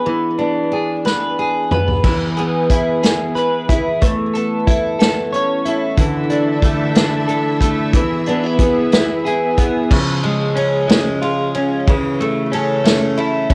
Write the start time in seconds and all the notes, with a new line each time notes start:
Already playing: D4 G#4 B4
0.06 E3 B3
0.39 B3 D4
0.72 D4 G#4
1.05 B3 B4, snare
1.39 G#4
1.71 B3 B4, mid tom
1.88 floor tom
2.04 E3, kick, crash
2.37 B3 G#4, closed hi-hat
2.70 E4 G#4, kick, closed hi-hat
3.03 B3 G#4, snare, closed hi-hat
3.35 E4 B4, closed hi-hat
3.69 E4 G#4, kick, closed hi-hat
4.02 E3 A3, kick, closed hi-hat
4.34 B3 A4, closed hi-hat
4.67 E4 A4, kick, closed hi-hat
4.99 B3 A4, snare, closed hi-hat
5.33 C#4 C#5, closed hi-hat
5.65 E4 A4, closed hi-hat
5.97 D3 E3 D4 E4 A4 E5, kick, closed hi-hat
6.30 A3 D4, closed hi-hat
6.62 A3 A4, kick, closed hi-hat
6.95 A3 D4, snare, closed hi-hat
7.28 D4 A4, closed hi-hat
7.61 A3 A4, kick, closed hi-hat
7.93 E3 B3 G#4, kick, closed hi-hat
8.26 B3 D4, closed hi-hat
8.44 E4
8.59 B3 G#4, kick, closed hi-hat
8.92 B3 E4, snare, closed hi-hat
9.25 E4 G#4, closed hi-hat
9.58 B3 G#4, kick, closed hi-hat
9.91 C#3 F3, kick, crash
10.23 G#3, ride
10.55 C#4 G#4, ride
10.88 G#3 C#4, snare, ride
11.22 F4 G#4, ride
11.54 C#4, ride
11.87 C#3 E3, kick, ride
12.20 A3, ride
12.52 C#4 A4, ride
12.84 A3 C#4, snare, ride
13.17 E4 A4, ride
13.50 C#4, kick, ride